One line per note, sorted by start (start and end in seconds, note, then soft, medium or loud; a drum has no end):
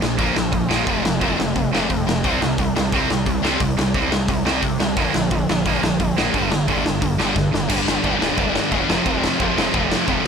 0.02 0.18 A#1 medium
0.02 0.17 A#2 medium
0.02 0.17 F3 medium
0.02 snare loud
0.18 0.35 A#1 medium
0.18 0.33 A#2 medium
0.18 0.34 F3 loud
0.18 0.35 A#3 loud
0.18 kick loud
0.18 open hi-hat medium
0.35 0.53 A#1 medium
0.35 0.51 A#2 medium
0.35 0.51 F3 medium
0.35 snare loud
0.52 0.84 A#1 loud
0.52 0.68 A#2 medium
0.52 0.68 F3 medium
0.52 kick loud
0.52 open hi-hat medium
0.69 0.86 A#2 medium
0.69 0.86 F3 medium
0.69 0.86 A#3 medium
0.69 snare loud
0.86 1.03 F1 medium
0.86 1.02 F2 loud
0.86 1.03 C3 loud
0.86 1.03 F3 medium
0.86 1.03 A3 loud
0.86 1.04 C4 medium
0.86 kick loud
0.86 open hi-hat medium
1.03 1.20 F1 medium
1.03 1.19 F2 medium
1.03 1.20 C3 medium
1.03 1.20 F3 medium
1.03 1.20 A3 medium
1.03 snare loud
1.20 1.37 F1 medium
1.20 1.36 F2 medium
1.20 1.37 C3 medium
1.20 1.37 F3 medium
1.20 1.37 A3 medium
1.20 1.38 C4 medium
1.20 kick loud
1.20 open hi-hat soft
1.38 1.54 F1 medium
1.38 1.53 F2 medium
1.38 1.54 C3 medium
1.38 1.54 F3 medium
1.38 1.54 A3 medium
1.38 snare loud
1.56 1.71 F1 medium
1.56 1.70 F2 medium
1.56 1.71 C3 medium
1.56 1.71 F3 medium
1.56 1.72 A3 medium
1.56 kick loud
1.56 open hi-hat medium
1.72 1.88 F1 medium
1.72 1.88 F2 medium
1.72 1.89 C3 loud
1.72 1.89 F3 medium
1.72 1.89 A3 loud
1.72 1.90 C4 medium
1.72 snare loud
1.89 2.05 F2 medium
1.89 2.06 F2 loud
1.89 2.05 C3 medium
1.89 2.06 F3 medium
1.89 2.06 A3 medium
1.89 kick loud
1.89 open hi-hat medium
2.07 2.22 F1 loud
2.07 2.22 F2 medium
2.07 2.22 C3 medium
2.07 2.22 F3 medium
2.07 2.23 A3 medium
2.07 snare loud
2.23 2.40 C2 medium
2.23 2.40 C3 medium
2.23 2.40 G3 medium
2.23 2.40 C4 loud
2.23 kick loud
2.23 open hi-hat medium
2.41 2.57 C2 medium
2.41 2.56 C3 medium
2.41 2.56 G3 medium
2.41 snare loud
2.58 2.74 C2 medium
2.58 2.74 C3 medium
2.58 2.74 G3 medium
2.58 kick loud
2.58 open hi-hat medium
2.76 2.91 C2 medium
2.76 2.91 C3 medium
2.76 2.91 G3 medium
2.76 snare loud
2.92 3.08 C2 medium
2.92 3.08 C3 loud
2.92 3.08 G3 loud
2.92 3.09 C4 medium
2.92 kick loud
2.92 open hi-hat medium
3.09 3.26 C2 medium
3.09 3.24 C3 medium
3.09 3.25 G3 medium
3.09 snare loud
3.26 3.57 C2 medium
3.26 3.41 C3 medium
3.26 3.41 G3 medium
3.26 kick loud
3.26 open hi-hat medium
3.42 3.59 C3 medium
3.42 3.59 G3 medium
3.42 3.59 C4 loud
3.42 snare loud
3.60 3.76 C2 medium
3.60 3.75 C3 medium
3.60 3.76 G3 medium
3.60 kick loud
3.60 open hi-hat medium
3.78 3.93 C2 medium
3.78 3.93 C3 medium
3.78 3.93 G3 medium
3.78 snare loud
3.94 4.10 C2 medium
3.94 4.11 C3 medium
3.94 4.11 G3 loud
3.94 4.11 C4 loud
3.94 kick loud
3.94 open hi-hat medium
4.11 4.27 C2 medium
4.11 4.27 C3 medium
4.11 4.28 G3 medium
4.11 snare loud
4.28 4.44 C2 medium
4.28 4.44 C3 medium
4.28 4.45 G3 medium
4.28 kick loud
4.28 open hi-hat medium
4.45 4.61 C2 medium
4.45 4.61 C3 medium
4.45 4.62 G3 medium
4.45 4.62 C4 loud
4.45 snare loud
4.62 4.78 C3 medium
4.62 4.79 G3 medium
4.62 kick loud
4.62 open hi-hat medium
4.80 4.96 B1 medium
4.80 4.95 C3 medium
4.80 4.96 G3 medium
4.80 snare loud
4.97 5.12 A#1 medium
4.97 5.13 A#2 medium
4.97 5.13 D3 medium
4.97 5.13 F3 loud
4.97 5.13 A#3 loud
4.97 kick loud
4.97 open hi-hat medium
5.14 5.30 A#1 medium
5.14 5.30 A#2 medium
5.14 5.30 D3 medium
5.14 5.29 F3 medium
5.14 snare loud
5.31 5.47 A#1 medium
5.31 5.46 A#2 medium
5.31 5.46 D3 medium
5.31 5.47 F3 medium
5.31 kick loud
5.31 open hi-hat medium
5.49 5.64 A#1 medium
5.49 5.64 A#2 medium
5.49 5.64 D3 medium
5.49 5.64 F3 medium
5.49 snare loud
5.66 5.81 A#1 medium
5.66 5.81 A#2 medium
5.66 5.82 D3 medium
5.66 5.82 F3 loud
5.66 5.82 A#3 loud
5.66 kick loud
5.66 open hi-hat medium
5.83 5.98 A#1 medium
5.83 5.98 A#2 medium
5.83 5.98 D3 medium
5.83 5.98 F3 medium
5.83 snare loud
6.00 6.31 A#1 loud
6.00 6.15 A#2 medium
6.00 6.15 D3 medium
6.00 6.15 F3 loud
6.00 kick loud
6.00 open hi-hat medium
6.18 6.33 A#2 medium
6.18 6.33 D3 loud
6.18 6.33 F3 loud
6.18 6.33 A#3 loud
6.18 snare loud
6.34 6.49 G1 medium
6.34 6.50 G2 medium
6.34 6.50 D3 medium
6.34 6.51 G3 loud
6.34 kick loud
6.34 open hi-hat medium
6.51 6.66 G1 medium
6.51 6.66 G2 medium
6.51 6.66 D3 medium
6.51 snare loud
6.68 6.84 G1 medium
6.68 6.83 G2 loud
6.68 6.84 D3 loud
6.68 6.85 G3 loud
6.68 kick loud
6.68 open hi-hat medium
6.84 7.01 G1 medium
6.84 7.00 G2 medium
6.84 7.00 D3 medium
6.84 snare loud
7.02 7.17 G1 medium
7.02 7.17 G2 medium
7.02 7.17 D3 medium
7.02 kick loud
7.02 open hi-hat medium
7.19 7.35 G1 medium
7.19 7.34 G2 medium
7.19 7.34 D3 medium
7.19 7.35 G3 loud
7.19 snare loud
7.35 7.51 G2 medium
7.35 7.51 D3 medium
7.35 kick loud
7.35 snare medium
7.53 7.69 G1 loud
7.53 7.67 G2 medium
7.53 7.68 D3 medium
7.53 snare medium
7.68 7.81 G1 medium
7.68 8.01 G2 medium
7.68 8.02 D3 medium
7.68 8.03 G3 medium
7.68 8.03 B3 medium
7.68 8.03 D4 loud
7.68 kick loud
7.68 crash loud
7.68 crash medium
7.88 7.99 G1 medium
7.88 snare loud
8.03 8.15 G1 medium
8.03 8.20 G2 medium
8.03 8.19 D3 medium
8.03 8.19 G3 medium
8.03 8.18 B3 medium
8.03 8.18 D4 loud
8.03 kick loud
8.03 crash medium
8.19 8.33 D1 medium
8.19 8.36 G2 medium
8.19 8.37 D3 medium
8.19 8.37 G3 medium
8.19 8.37 B3 medium
8.19 8.38 D4 medium
8.19 snare loud
8.37 8.60 F1 medium
8.37 8.69 G2 medium
8.37 8.70 D3 loud
8.37 8.70 G3 loud
8.37 8.71 B3 loud
8.37 8.72 D4 loud
8.37 kick loud
8.37 crash medium
8.55 snare loud
8.70 8.83 D1 medium
8.70 8.87 G2 medium
8.70 8.88 D3 medium
8.70 8.88 G3 medium
8.70 8.88 B3 medium
8.70 8.89 D4 medium
8.70 kick loud
8.70 crash medium
8.88 9.00 F1 loud
8.88 9.06 F2 medium
8.88 9.06 C3 loud
8.88 9.06 F3 loud
8.88 9.05 A3 medium
8.88 9.05 C4 loud
8.88 snare loud
9.06 9.28 F1 medium
9.06 9.40 F2 medium
9.06 9.40 C3 medium
9.06 9.40 F3 medium
9.06 9.40 A3 loud
9.06 9.38 C4 loud
9.06 kick loud
9.06 crash medium
9.24 snare loud
9.40 9.51 F1 medium
9.40 9.55 F2 medium
9.40 9.56 C3 medium
9.40 9.56 F3 medium
9.40 9.56 A3 medium
9.40 9.57 C4 medium
9.40 kick loud
9.40 crash medium
9.56 9.69 F1 medium
9.56 9.74 F2 medium
9.56 9.74 C3 medium
9.56 9.73 F3 medium
9.56 9.73 A3 medium
9.56 9.72 C4 medium
9.56 snare loud
9.73 9.96 F1 medium
9.73 10.08 F2 medium
9.73 10.08 C3 medium
9.73 10.08 F3 loud
9.73 10.07 A3 loud
9.73 10.06 C4 loud
9.73 kick loud
9.73 crash medium
9.92 snare loud
10.07 10.19 F1 medium
10.07 10.23 F2 medium
10.07 10.24 C3 medium
10.07 10.24 F3 medium
10.07 10.25 A3 loud
10.07 10.25 C4 loud
10.07 kick loud
10.07 crash medium
10.24 10.27 F2 medium